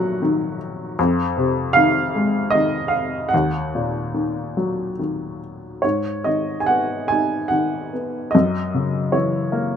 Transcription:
0.00 0.95 A#1 medium
0.00 0.56 A#2 soft
0.00 0.21 D#3 medium
0.00 0.95 F#3 medium
0.00 1.00 C#5 medium
0.00 1.00 D#5 medium
0.00 0.55 F#5 medium
0.22 0.97 D#3 medium
0.99 3.29 F2 medium
1.37 2.89 C3 medium
1.73 2.54 D#3 medium
1.73 2.54 F5 medium
2.15 3.30 G#3 medium
2.50 2.93 D#5 medium
2.55 3.31 D#3 medium
2.88 3.31 F5 medium
3.29 4.92 F#5 medium
3.34 5.81 D#2 medium
3.75 5.38 A#2 soft
4.14 4.98 D#3 soft
4.57 5.81 F#3 soft
4.99 5.82 D#3 soft
5.82 8.30 G#2 soft
5.82 6.27 C#5 medium
6.24 7.50 D#3 soft
6.24 6.58 D#5 medium
6.60 6.68 G#5 soft
6.66 7.92 B3 soft
6.66 7.11 F#5 medium
7.08 8.31 D#4 soft
7.08 7.47 G#5 medium
7.48 8.31 D#3 soft
7.48 8.35 F#5 medium
7.93 8.33 B3 soft
8.31 9.15 D#5 medium
8.35 9.77 F#2 medium
8.74 9.77 C#3 soft
9.12 9.77 E3 soft
9.12 9.77 C#5 medium
9.52 9.77 A#3 medium

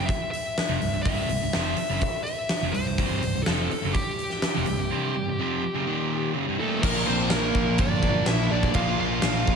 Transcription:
0.06 0.30 E5 medium
0.06 kick medium
0.06 open hi-hat medium
0.31 1.01 E5 medium
0.31 open hi-hat medium
0.58 snare loud
0.58 open hi-hat medium
0.69 0.80 F1 medium
0.69 0.80 F2 medium
0.69 0.80 C3 medium
0.81 0.93 C1 medium
0.81 0.91 C2 medium
0.81 0.91 G2 medium
0.81 open hi-hat medium
0.92 1.04 C1 medium
0.92 1.02 C2 medium
0.92 1.03 G2 medium
1.03 1.28 C1 medium
1.03 1.28 C2 medium
1.03 1.28 G2 medium
1.03 1.28 C3 loud
1.03 2.22 E5 medium
1.03 kick loud
1.03 open hi-hat medium
1.29 1.40 C1 medium
1.29 1.40 C2 medium
1.29 1.41 G2 medium
1.29 open hi-hat medium
1.41 1.53 C1 medium
1.41 1.52 C2 medium
1.41 1.54 G2 medium
1.53 1.76 F1 medium
1.53 1.76 F2 medium
1.53 1.77 C3 medium
1.53 1.77 F3 medium
1.53 snare loud
1.53 open hi-hat medium
1.77 muted distorted electric guitar stroke medium
1.77 muted fretless electric bass stroke soft
1.77 muted overdriven electric guitar stroke medium
1.77 open hi-hat medium
1.89 2.01 F#1 medium
1.89 2.01 F#2 medium
1.89 2.01 C#3 medium
2.01 kick medium
2.01 open hi-hat medium
2.23 2.74 E5 medium
2.23 open hi-hat soft
2.49 snare loud
2.49 open hi-hat medium
2.62 2.73 F1 medium
2.62 2.73 F2 medium
2.62 2.73 C3 medium
2.72 2.86 C1 medium
2.72 2.84 C2 medium
2.72 2.85 G2 medium
2.72 3.43 C5 medium
2.72 open hi-hat medium
2.86 2.98 C1 medium
2.86 2.96 C2 medium
2.86 2.97 G2 medium
2.98 3.21 C1 medium
2.98 3.21 C2 loud
2.98 3.22 G2 medium
2.98 3.22 C3 medium
2.98 kick loud
2.98 open hi-hat medium
3.22 3.34 C1 medium
3.22 3.33 C2 medium
3.22 3.33 G2 medium
3.22 open hi-hat medium
3.35 3.47 C1 medium
3.35 3.46 C2 medium
3.35 3.47 G2 medium
3.43 3.70 F2 medium
3.43 3.70 C3 medium
3.43 3.95 A4 medium
3.43 snare loud
3.43 open hi-hat medium
3.47 3.70 F1 medium
3.47 3.70 F3 loud
3.70 muted distorted electric guitar stroke medium
3.70 muted overdriven electric guitar stroke medium
3.70 muted fretless electric bass stroke soft
3.70 open hi-hat soft
3.82 3.95 F#1 medium
3.82 3.94 F#2 medium
3.82 3.94 C#3 medium
3.93 6.31 G4 medium
3.93 kick loud
3.93 open hi-hat medium
4.19 open hi-hat soft
4.30 snare soft
4.42 snare loud
4.42 open hi-hat medium
4.54 4.67 F1 medium
4.54 4.66 F2 medium
4.54 4.67 C3 medium
4.66 4.79 C1 medium
4.66 4.78 C2 medium
4.66 4.78 G2 medium
4.66 open hi-hat medium
4.79 4.91 C1 medium
4.79 4.89 C2 medium
4.79 4.90 G2 medium
4.90 5.13 C2 medium
4.90 5.13 G2 medium
4.90 5.15 C3 loud
5.14 5.25 C2 medium
5.14 5.25 G2 medium
5.26 5.38 C2 medium
5.26 5.39 G2 medium
5.38 5.62 F2 medium
5.38 5.63 C3 medium
5.38 5.63 F3 medium
5.63 muted distorted electric guitar stroke medium
5.63 muted overdriven electric guitar stroke medium
5.74 5.86 F#2 medium
5.74 5.86 C#3 medium
5.86 6.34 D#2 medium
5.86 6.34 A#2 medium
5.86 6.35 D#3 medium
6.35 6.46 F#2 medium
6.35 6.47 C#3 medium
6.46 6.58 C2 medium
6.46 6.59 G2 medium
6.59 6.82 D#2 medium
6.59 6.81 A#2 medium
6.59 6.83 D#3 medium
6.59 6.82 A4 medium
6.63 6.84 A3 medium
6.83 7.06 A#1 medium
6.83 8.50 A#2 medium
6.83 8.51 F3 loud
6.83 7.07 A#3 medium
6.83 8.50 A#3 medium
6.83 7.07 A#4 medium
6.83 kick loud
6.83 crash loud
6.83 crash medium
7.07 7.30 A#1 medium
7.07 7.31 C4 medium
7.07 7.30 C5 medium
7.30 7.54 A#1 medium
7.30 7.76 A#3 medium
7.30 7.81 A#4 medium
7.30 snare loud
7.30 crash medium
7.55 7.78 A#1 medium
7.55 kick medium
7.78 8.24 G1 medium
7.78 8.24 D4 medium
7.78 8.27 D5 medium
7.78 kick loud
7.78 crash medium
8.02 8.25 A#2 medium
8.02 8.26 F3 medium
8.02 8.26 A#3 medium
8.02 kick medium
8.26 8.50 A#1 medium
8.26 8.74 A#2 medium
8.26 8.74 F3 medium
8.26 8.75 A#3 medium
8.26 8.50 E4 medium
8.26 8.52 E5 medium
8.26 snare loud
8.26 crash medium
8.51 8.74 A#1 medium
8.51 8.73 A#2 medium
8.51 8.75 F3 medium
8.51 8.74 A#3 medium
8.51 8.74 D4 medium
8.51 8.74 D5 medium
8.63 kick medium
8.74 8.98 A#1 medium
8.74 9.56 A#2 medium
8.74 9.56 F3 medium
8.74 8.98 F4 medium
8.74 8.99 F5 loud
8.74 kick loud
8.74 crash medium
8.78 9.56 A#3 loud
9.00 9.22 A#1 medium
9.00 9.56 F4 medium
9.00 9.56 F5 loud
9.22 9.46 A#1 loud
9.22 snare loud
9.22 crash medium
9.47 9.56 A#1 loud
9.47 kick medium

